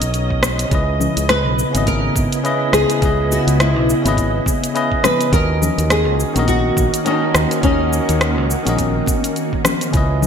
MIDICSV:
0, 0, Header, 1, 6, 480
1, 0, Start_track
1, 0, Tempo, 576923
1, 592, Time_signature, 4, 2, 24, 8
1, 8544, End_track
2, 0, Start_track
2, 0, Title_t, "Nylon-string guitar"
2, 0, Program_c, 0, 24
2, 1080, Note_on_c, 0, 71, 108
2, 1557, Note_off_c, 0, 71, 0
2, 1560, Note_on_c, 0, 70, 96
2, 2003, Note_off_c, 0, 70, 0
2, 2276, Note_on_c, 0, 68, 111
2, 2763, Note_on_c, 0, 66, 92
2, 2768, Note_off_c, 0, 68, 0
2, 3001, Note_off_c, 0, 66, 0
2, 3004, Note_on_c, 0, 64, 79
2, 3445, Note_off_c, 0, 64, 0
2, 4198, Note_on_c, 0, 71, 101
2, 4434, Note_off_c, 0, 71, 0
2, 4438, Note_on_c, 0, 70, 106
2, 4916, Note_off_c, 0, 70, 0
2, 4919, Note_on_c, 0, 68, 101
2, 5391, Note_off_c, 0, 68, 0
2, 5394, Note_on_c, 0, 66, 98
2, 5872, Note_on_c, 0, 63, 85
2, 5888, Note_off_c, 0, 66, 0
2, 6350, Note_off_c, 0, 63, 0
2, 6353, Note_on_c, 0, 61, 82
2, 8000, Note_off_c, 0, 61, 0
2, 8544, End_track
3, 0, Start_track
3, 0, Title_t, "Tine electric piano"
3, 0, Program_c, 1, 4
3, 0, Control_c, 1, 64, 127
3, 0, Note_on_c, 1, 59, 80
3, 0, Note_on_c, 1, 66, 75
3, 0, Note_on_c, 1, 70, 72
3, 0, Note_on_c, 1, 73, 74
3, 0, Note_on_c, 1, 75, 89
3, 83, Note_off_c, 1, 66, 0
3, 90, Note_off_c, 1, 70, 0
3, 96, Note_off_c, 1, 73, 0
3, 103, Note_off_c, 1, 75, 0
3, 570, Note_on_c, 1, 49, 83
3, 583, Note_on_c, 1, 61, 76
3, 597, Note_on_c, 1, 64, 72
3, 603, Control_c, 1, 64, 0
3, 607, Note_on_c, 1, 71, 76
3, 610, Note_off_c, 1, 59, 0
3, 622, Note_on_c, 1, 75, 96
3, 742, Control_c, 1, 64, 127
3, 1406, Note_off_c, 1, 49, 0
3, 1413, Note_off_c, 1, 61, 0
3, 1420, Note_off_c, 1, 64, 0
3, 1425, Note_off_c, 1, 71, 0
3, 1428, Note_on_c, 1, 49, 79
3, 1432, Note_off_c, 1, 75, 0
3, 1439, Note_on_c, 1, 61, 71
3, 1451, Note_on_c, 1, 64, 76
3, 1464, Note_on_c, 1, 59, 78
3, 1477, Note_on_c, 1, 75, 87
3, 1996, Note_off_c, 1, 49, 0
3, 2002, Note_off_c, 1, 61, 0
3, 2008, Note_off_c, 1, 64, 0
3, 2014, Note_off_c, 1, 59, 0
3, 2021, Note_off_c, 1, 75, 0
3, 2022, Note_on_c, 1, 49, 90
3, 2028, Note_on_c, 1, 61, 79
3, 2034, Note_on_c, 1, 64, 82
3, 2039, Note_on_c, 1, 71, 82
3, 2047, Note_on_c, 1, 75, 100
3, 2483, Note_off_c, 1, 49, 0
3, 2486, Note_off_c, 1, 61, 0
3, 2489, Note_off_c, 1, 64, 0
3, 2491, Note_off_c, 1, 71, 0
3, 2491, Note_on_c, 1, 49, 83
3, 2495, Note_off_c, 1, 75, 0
3, 2504, Note_on_c, 1, 61, 78
3, 2517, Note_on_c, 1, 64, 75
3, 2528, Note_on_c, 1, 71, 76
3, 2542, Note_on_c, 1, 75, 96
3, 3327, Note_off_c, 1, 49, 0
3, 3334, Note_off_c, 1, 61, 0
3, 3340, Note_off_c, 1, 64, 0
3, 3346, Note_off_c, 1, 71, 0
3, 3346, Note_on_c, 1, 49, 82
3, 3352, Note_off_c, 1, 75, 0
3, 3359, Note_on_c, 1, 61, 74
3, 3371, Note_on_c, 1, 64, 71
3, 3383, Note_on_c, 1, 71, 77
3, 3396, Note_on_c, 1, 75, 94
3, 3915, Note_off_c, 1, 49, 0
3, 3922, Note_off_c, 1, 61, 0
3, 3928, Note_off_c, 1, 64, 0
3, 3934, Note_off_c, 1, 71, 0
3, 3941, Note_off_c, 1, 75, 0
3, 3941, Note_on_c, 1, 49, 85
3, 3949, Note_on_c, 1, 61, 81
3, 3953, Note_on_c, 1, 64, 86
3, 3959, Note_on_c, 1, 71, 82
3, 3965, Note_on_c, 1, 75, 103
3, 4402, Note_off_c, 1, 49, 0
3, 4406, Note_off_c, 1, 61, 0
3, 4408, Note_off_c, 1, 64, 0
3, 4410, Note_on_c, 1, 51, 83
3, 4412, Note_off_c, 1, 71, 0
3, 4414, Note_off_c, 1, 75, 0
3, 4422, Note_on_c, 1, 61, 76
3, 4434, Note_on_c, 1, 66, 79
3, 4442, Control_c, 1, 64, 0
3, 4447, Note_on_c, 1, 70, 81
3, 4459, Note_on_c, 1, 75, 98
3, 4585, Control_c, 1, 64, 127
3, 5246, Note_off_c, 1, 51, 0
3, 5252, Note_off_c, 1, 61, 0
3, 5258, Note_off_c, 1, 66, 0
3, 5265, Note_off_c, 1, 70, 0
3, 5268, Note_on_c, 1, 51, 88
3, 5271, Note_off_c, 1, 75, 0
3, 5282, Note_on_c, 1, 61, 75
3, 5295, Note_on_c, 1, 66, 80
3, 5307, Note_on_c, 1, 70, 77
3, 5318, Note_on_c, 1, 75, 94
3, 5837, Note_off_c, 1, 51, 0
3, 5843, Note_off_c, 1, 61, 0
3, 5850, Note_off_c, 1, 66, 0
3, 5856, Note_off_c, 1, 70, 0
3, 5861, Note_off_c, 1, 75, 0
3, 5862, Note_on_c, 1, 51, 96
3, 5868, Note_on_c, 1, 61, 78
3, 5874, Note_on_c, 1, 66, 81
3, 5880, Note_on_c, 1, 70, 80
3, 5887, Note_on_c, 1, 75, 100
3, 6315, Note_off_c, 1, 51, 0
3, 6325, Note_on_c, 1, 51, 80
3, 6326, Note_off_c, 1, 61, 0
3, 6329, Note_off_c, 1, 66, 0
3, 6332, Note_off_c, 1, 70, 0
3, 6335, Note_off_c, 1, 75, 0
3, 6338, Note_on_c, 1, 61, 79
3, 6351, Note_on_c, 1, 66, 74
3, 6363, Note_on_c, 1, 70, 78
3, 6377, Note_on_c, 1, 75, 92
3, 7164, Note_off_c, 1, 51, 0
3, 7171, Note_off_c, 1, 61, 0
3, 7177, Note_off_c, 1, 66, 0
3, 7182, Note_on_c, 1, 51, 84
3, 7183, Note_off_c, 1, 70, 0
3, 7190, Note_off_c, 1, 75, 0
3, 7195, Note_on_c, 1, 61, 74
3, 7208, Note_on_c, 1, 66, 73
3, 7219, Note_on_c, 1, 70, 69
3, 7231, Note_on_c, 1, 75, 83
3, 7754, Note_off_c, 1, 51, 0
3, 7760, Note_off_c, 1, 61, 0
3, 7766, Note_off_c, 1, 66, 0
3, 7772, Note_off_c, 1, 70, 0
3, 7778, Note_off_c, 1, 75, 0
3, 8245, Note_on_c, 1, 49, 85
3, 8258, Note_on_c, 1, 61, 79
3, 8270, Note_on_c, 1, 64, 79
3, 8283, Note_on_c, 1, 71, 76
3, 8284, Control_c, 1, 64, 0
3, 8295, Note_on_c, 1, 75, 91
3, 8422, Control_c, 1, 64, 127
3, 8544, Note_off_c, 1, 49, 0
3, 8544, Note_off_c, 1, 61, 0
3, 8544, Note_off_c, 1, 64, 0
3, 8544, Note_off_c, 1, 71, 0
3, 8544, Note_off_c, 1, 75, 0
3, 8544, End_track
4, 0, Start_track
4, 0, Title_t, "String machine"
4, 0, Program_c, 2, 50
4, 0, Note_on_c, 2, 61, 71
4, 0, Note_on_c, 2, 75, 73
4, 0, Note_on_c, 2, 82, 77
4, 561, Note_off_c, 2, 82, 0
4, 571, Note_off_c, 2, 61, 0
4, 595, Note_on_c, 2, 59, 75
4, 596, Note_on_c, 2, 49, 78
4, 597, Note_on_c, 2, 64, 82
4, 4400, Note_off_c, 2, 59, 0
4, 4401, Note_off_c, 2, 49, 0
4, 4401, Note_off_c, 2, 64, 0
4, 4401, Note_off_c, 2, 75, 0
4, 4434, Note_on_c, 2, 51, 75
4, 4434, Note_on_c, 2, 61, 71
4, 4435, Note_on_c, 2, 58, 76
4, 4435, Note_on_c, 2, 66, 85
4, 8240, Note_off_c, 2, 51, 0
4, 8240, Note_off_c, 2, 58, 0
4, 8240, Note_off_c, 2, 61, 0
4, 8240, Note_off_c, 2, 66, 0
4, 8267, Note_on_c, 2, 49, 82
4, 8268, Note_on_c, 2, 59, 75
4, 8268, Note_on_c, 2, 75, 72
4, 8269, Note_on_c, 2, 64, 87
4, 8544, Note_off_c, 2, 49, 0
4, 8544, Note_off_c, 2, 59, 0
4, 8544, Note_off_c, 2, 64, 0
4, 8544, Note_off_c, 2, 75, 0
4, 8544, End_track
5, 0, Start_track
5, 0, Title_t, "Fingered electric bass"
5, 0, Program_c, 3, 33
5, 11, Note_on_c, 3, 35, 73
5, 530, Note_off_c, 3, 35, 0
5, 593, Note_on_c, 3, 37, 89
5, 887, Note_off_c, 3, 37, 0
5, 972, Note_on_c, 3, 37, 83
5, 1212, Note_off_c, 3, 37, 0
5, 1212, Note_on_c, 3, 35, 80
5, 1346, Note_off_c, 3, 35, 0
5, 1454, Note_on_c, 3, 32, 90
5, 1732, Note_off_c, 3, 32, 0
5, 1795, Note_on_c, 3, 32, 83
5, 1879, Note_off_c, 3, 32, 0
5, 2271, Note_on_c, 3, 37, 84
5, 2357, Note_off_c, 3, 37, 0
5, 2512, Note_on_c, 3, 37, 92
5, 2806, Note_off_c, 3, 37, 0
5, 2888, Note_on_c, 3, 37, 91
5, 3130, Note_off_c, 3, 37, 0
5, 3130, Note_on_c, 3, 35, 81
5, 3265, Note_off_c, 3, 35, 0
5, 3372, Note_on_c, 3, 32, 88
5, 3651, Note_off_c, 3, 32, 0
5, 4430, Note_on_c, 3, 39, 98
5, 4725, Note_off_c, 3, 39, 0
5, 4809, Note_on_c, 3, 39, 89
5, 5053, Note_off_c, 3, 39, 0
5, 5053, Note_on_c, 3, 37, 80
5, 5186, Note_off_c, 3, 37, 0
5, 5288, Note_on_c, 3, 34, 93
5, 5569, Note_off_c, 3, 34, 0
5, 5631, Note_on_c, 3, 34, 86
5, 5718, Note_off_c, 3, 34, 0
5, 6112, Note_on_c, 3, 39, 83
5, 6198, Note_off_c, 3, 39, 0
5, 6350, Note_on_c, 3, 39, 97
5, 6645, Note_off_c, 3, 39, 0
5, 6733, Note_on_c, 3, 39, 92
5, 6972, Note_off_c, 3, 39, 0
5, 6972, Note_on_c, 3, 37, 85
5, 7106, Note_off_c, 3, 37, 0
5, 7210, Note_on_c, 3, 34, 84
5, 7490, Note_off_c, 3, 34, 0
5, 8268, Note_on_c, 3, 37, 90
5, 8544, Note_off_c, 3, 37, 0
5, 8544, End_track
6, 0, Start_track
6, 0, Title_t, "Drums"
6, 13, Note_on_c, 9, 42, 55
6, 20, Note_on_c, 9, 82, 42
6, 96, Note_off_c, 9, 42, 0
6, 103, Note_off_c, 9, 82, 0
6, 115, Note_on_c, 9, 42, 43
6, 121, Note_on_c, 9, 82, 31
6, 198, Note_off_c, 9, 42, 0
6, 205, Note_off_c, 9, 82, 0
6, 254, Note_on_c, 9, 36, 54
6, 337, Note_off_c, 9, 36, 0
6, 353, Note_on_c, 9, 63, 74
6, 355, Note_on_c, 9, 37, 74
6, 362, Note_on_c, 9, 82, 68
6, 436, Note_off_c, 9, 63, 0
6, 438, Note_off_c, 9, 37, 0
6, 445, Note_off_c, 9, 82, 0
6, 493, Note_on_c, 9, 42, 53
6, 499, Note_on_c, 9, 82, 39
6, 576, Note_off_c, 9, 42, 0
6, 582, Note_off_c, 9, 82, 0
6, 594, Note_on_c, 9, 42, 44
6, 595, Note_on_c, 9, 36, 110
6, 601, Note_on_c, 9, 82, 31
6, 677, Note_off_c, 9, 42, 0
6, 678, Note_off_c, 9, 36, 0
6, 684, Note_off_c, 9, 82, 0
6, 835, Note_on_c, 9, 64, 56
6, 841, Note_on_c, 9, 82, 67
6, 918, Note_off_c, 9, 64, 0
6, 924, Note_off_c, 9, 82, 0
6, 973, Note_on_c, 9, 42, 53
6, 979, Note_on_c, 9, 82, 43
6, 1056, Note_off_c, 9, 42, 0
6, 1063, Note_off_c, 9, 82, 0
6, 1074, Note_on_c, 9, 37, 75
6, 1074, Note_on_c, 9, 42, 46
6, 1081, Note_on_c, 9, 82, 32
6, 1157, Note_off_c, 9, 37, 0
6, 1157, Note_off_c, 9, 42, 0
6, 1164, Note_off_c, 9, 82, 0
6, 1322, Note_on_c, 9, 82, 69
6, 1405, Note_off_c, 9, 82, 0
6, 1451, Note_on_c, 9, 63, 93
6, 1453, Note_on_c, 9, 42, 53
6, 1459, Note_on_c, 9, 82, 43
6, 1534, Note_off_c, 9, 63, 0
6, 1536, Note_off_c, 9, 42, 0
6, 1543, Note_off_c, 9, 82, 0
6, 1554, Note_on_c, 9, 36, 58
6, 1555, Note_on_c, 9, 42, 41
6, 1562, Note_on_c, 9, 82, 32
6, 1638, Note_off_c, 9, 36, 0
6, 1638, Note_off_c, 9, 42, 0
6, 1645, Note_off_c, 9, 82, 0
6, 1794, Note_on_c, 9, 36, 99
6, 1799, Note_on_c, 9, 82, 67
6, 1877, Note_off_c, 9, 36, 0
6, 1882, Note_off_c, 9, 82, 0
6, 1934, Note_on_c, 9, 42, 55
6, 1941, Note_on_c, 9, 82, 40
6, 2017, Note_off_c, 9, 42, 0
6, 2024, Note_off_c, 9, 82, 0
6, 2036, Note_on_c, 9, 42, 41
6, 2043, Note_on_c, 9, 82, 31
6, 2119, Note_off_c, 9, 42, 0
6, 2126, Note_off_c, 9, 82, 0
6, 2272, Note_on_c, 9, 37, 76
6, 2279, Note_on_c, 9, 82, 71
6, 2356, Note_off_c, 9, 37, 0
6, 2362, Note_off_c, 9, 82, 0
6, 2410, Note_on_c, 9, 42, 53
6, 2416, Note_on_c, 9, 82, 42
6, 2493, Note_off_c, 9, 42, 0
6, 2499, Note_off_c, 9, 82, 0
6, 2513, Note_on_c, 9, 36, 113
6, 2513, Note_on_c, 9, 42, 41
6, 2520, Note_on_c, 9, 82, 30
6, 2596, Note_off_c, 9, 36, 0
6, 2597, Note_off_c, 9, 42, 0
6, 2603, Note_off_c, 9, 82, 0
6, 2761, Note_on_c, 9, 82, 68
6, 2845, Note_off_c, 9, 82, 0
6, 2893, Note_on_c, 9, 42, 51
6, 2900, Note_on_c, 9, 82, 45
6, 2976, Note_off_c, 9, 42, 0
6, 2983, Note_off_c, 9, 82, 0
6, 2996, Note_on_c, 9, 37, 72
6, 2996, Note_on_c, 9, 42, 40
6, 3003, Note_on_c, 9, 82, 32
6, 3079, Note_off_c, 9, 37, 0
6, 3079, Note_off_c, 9, 42, 0
6, 3086, Note_off_c, 9, 82, 0
6, 3242, Note_on_c, 9, 82, 72
6, 3325, Note_off_c, 9, 82, 0
6, 3375, Note_on_c, 9, 42, 58
6, 3375, Note_on_c, 9, 63, 99
6, 3381, Note_on_c, 9, 82, 44
6, 3458, Note_off_c, 9, 42, 0
6, 3458, Note_off_c, 9, 63, 0
6, 3465, Note_off_c, 9, 82, 0
6, 3472, Note_on_c, 9, 36, 56
6, 3477, Note_on_c, 9, 42, 41
6, 3484, Note_on_c, 9, 82, 32
6, 3555, Note_off_c, 9, 36, 0
6, 3560, Note_off_c, 9, 42, 0
6, 3567, Note_off_c, 9, 82, 0
6, 3710, Note_on_c, 9, 63, 81
6, 3712, Note_on_c, 9, 36, 100
6, 3725, Note_on_c, 9, 82, 71
6, 3793, Note_off_c, 9, 63, 0
6, 3795, Note_off_c, 9, 36, 0
6, 3808, Note_off_c, 9, 82, 0
6, 3857, Note_on_c, 9, 42, 56
6, 3863, Note_on_c, 9, 82, 46
6, 3940, Note_off_c, 9, 42, 0
6, 3946, Note_off_c, 9, 82, 0
6, 3957, Note_on_c, 9, 42, 42
6, 3963, Note_on_c, 9, 82, 32
6, 4040, Note_off_c, 9, 42, 0
6, 4046, Note_off_c, 9, 82, 0
6, 4090, Note_on_c, 9, 36, 64
6, 4173, Note_off_c, 9, 36, 0
6, 4187, Note_on_c, 9, 63, 80
6, 4193, Note_on_c, 9, 37, 75
6, 4193, Note_on_c, 9, 64, 67
6, 4200, Note_on_c, 9, 82, 79
6, 4270, Note_off_c, 9, 63, 0
6, 4276, Note_off_c, 9, 37, 0
6, 4276, Note_off_c, 9, 64, 0
6, 4283, Note_off_c, 9, 82, 0
6, 4331, Note_on_c, 9, 42, 55
6, 4338, Note_on_c, 9, 82, 43
6, 4414, Note_off_c, 9, 42, 0
6, 4421, Note_off_c, 9, 82, 0
6, 4431, Note_on_c, 9, 36, 120
6, 4433, Note_on_c, 9, 42, 41
6, 4439, Note_on_c, 9, 82, 35
6, 4514, Note_off_c, 9, 36, 0
6, 4516, Note_off_c, 9, 42, 0
6, 4523, Note_off_c, 9, 82, 0
6, 4675, Note_on_c, 9, 64, 53
6, 4681, Note_on_c, 9, 82, 77
6, 4758, Note_off_c, 9, 64, 0
6, 4765, Note_off_c, 9, 82, 0
6, 4813, Note_on_c, 9, 42, 49
6, 4820, Note_on_c, 9, 82, 43
6, 4896, Note_off_c, 9, 42, 0
6, 4903, Note_off_c, 9, 82, 0
6, 4912, Note_on_c, 9, 37, 72
6, 4912, Note_on_c, 9, 42, 39
6, 4918, Note_on_c, 9, 82, 34
6, 4995, Note_off_c, 9, 37, 0
6, 4995, Note_off_c, 9, 42, 0
6, 5001, Note_off_c, 9, 82, 0
6, 5158, Note_on_c, 9, 82, 67
6, 5242, Note_off_c, 9, 82, 0
6, 5287, Note_on_c, 9, 63, 95
6, 5290, Note_on_c, 9, 42, 51
6, 5296, Note_on_c, 9, 82, 45
6, 5371, Note_off_c, 9, 63, 0
6, 5373, Note_off_c, 9, 42, 0
6, 5379, Note_off_c, 9, 82, 0
6, 5390, Note_on_c, 9, 42, 42
6, 5391, Note_on_c, 9, 36, 62
6, 5396, Note_on_c, 9, 82, 35
6, 5473, Note_off_c, 9, 42, 0
6, 5474, Note_off_c, 9, 36, 0
6, 5479, Note_off_c, 9, 82, 0
6, 5631, Note_on_c, 9, 36, 104
6, 5637, Note_on_c, 9, 82, 76
6, 5714, Note_off_c, 9, 36, 0
6, 5720, Note_off_c, 9, 82, 0
6, 5771, Note_on_c, 9, 42, 52
6, 5778, Note_on_c, 9, 82, 45
6, 5854, Note_off_c, 9, 42, 0
6, 5861, Note_off_c, 9, 82, 0
6, 5872, Note_on_c, 9, 42, 42
6, 5879, Note_on_c, 9, 82, 35
6, 5955, Note_off_c, 9, 42, 0
6, 5962, Note_off_c, 9, 82, 0
6, 6111, Note_on_c, 9, 37, 80
6, 6118, Note_on_c, 9, 82, 76
6, 6195, Note_off_c, 9, 37, 0
6, 6201, Note_off_c, 9, 82, 0
6, 6250, Note_on_c, 9, 42, 52
6, 6256, Note_on_c, 9, 82, 44
6, 6333, Note_off_c, 9, 42, 0
6, 6340, Note_off_c, 9, 82, 0
6, 6350, Note_on_c, 9, 36, 119
6, 6350, Note_on_c, 9, 42, 41
6, 6356, Note_on_c, 9, 82, 33
6, 6433, Note_off_c, 9, 36, 0
6, 6433, Note_off_c, 9, 42, 0
6, 6439, Note_off_c, 9, 82, 0
6, 6598, Note_on_c, 9, 82, 75
6, 6681, Note_off_c, 9, 82, 0
6, 6730, Note_on_c, 9, 42, 49
6, 6736, Note_on_c, 9, 82, 43
6, 6813, Note_off_c, 9, 42, 0
6, 6819, Note_off_c, 9, 82, 0
6, 6831, Note_on_c, 9, 37, 73
6, 6831, Note_on_c, 9, 42, 40
6, 6837, Note_on_c, 9, 82, 31
6, 6914, Note_off_c, 9, 37, 0
6, 6914, Note_off_c, 9, 42, 0
6, 6920, Note_off_c, 9, 82, 0
6, 7076, Note_on_c, 9, 82, 70
6, 7159, Note_off_c, 9, 82, 0
6, 7200, Note_on_c, 9, 63, 91
6, 7210, Note_on_c, 9, 42, 54
6, 7216, Note_on_c, 9, 82, 45
6, 7283, Note_off_c, 9, 63, 0
6, 7293, Note_off_c, 9, 42, 0
6, 7300, Note_off_c, 9, 82, 0
6, 7309, Note_on_c, 9, 42, 42
6, 7310, Note_on_c, 9, 36, 57
6, 7316, Note_on_c, 9, 82, 32
6, 7392, Note_off_c, 9, 42, 0
6, 7393, Note_off_c, 9, 36, 0
6, 7399, Note_off_c, 9, 82, 0
6, 7540, Note_on_c, 9, 63, 88
6, 7550, Note_on_c, 9, 36, 99
6, 7555, Note_on_c, 9, 82, 75
6, 7623, Note_off_c, 9, 63, 0
6, 7633, Note_off_c, 9, 36, 0
6, 7638, Note_off_c, 9, 82, 0
6, 7688, Note_on_c, 9, 42, 49
6, 7695, Note_on_c, 9, 82, 44
6, 7771, Note_off_c, 9, 42, 0
6, 7778, Note_off_c, 9, 82, 0
6, 7789, Note_on_c, 9, 42, 38
6, 7796, Note_on_c, 9, 82, 31
6, 7872, Note_off_c, 9, 42, 0
6, 7879, Note_off_c, 9, 82, 0
6, 7928, Note_on_c, 9, 36, 57
6, 8011, Note_off_c, 9, 36, 0
6, 8026, Note_on_c, 9, 37, 71
6, 8026, Note_on_c, 9, 64, 70
6, 8031, Note_on_c, 9, 63, 76
6, 8033, Note_on_c, 9, 82, 78
6, 8110, Note_off_c, 9, 37, 0
6, 8110, Note_off_c, 9, 64, 0
6, 8114, Note_off_c, 9, 63, 0
6, 8116, Note_off_c, 9, 82, 0
6, 8164, Note_on_c, 9, 42, 50
6, 8171, Note_on_c, 9, 82, 43
6, 8247, Note_off_c, 9, 42, 0
6, 8254, Note_off_c, 9, 82, 0
6, 8265, Note_on_c, 9, 42, 40
6, 8269, Note_on_c, 9, 36, 116
6, 8272, Note_on_c, 9, 82, 32
6, 8349, Note_off_c, 9, 42, 0
6, 8352, Note_off_c, 9, 36, 0
6, 8355, Note_off_c, 9, 82, 0
6, 8506, Note_on_c, 9, 64, 57
6, 8512, Note_on_c, 9, 82, 71
6, 8544, Note_off_c, 9, 64, 0
6, 8544, Note_off_c, 9, 82, 0
6, 8544, End_track
0, 0, End_of_file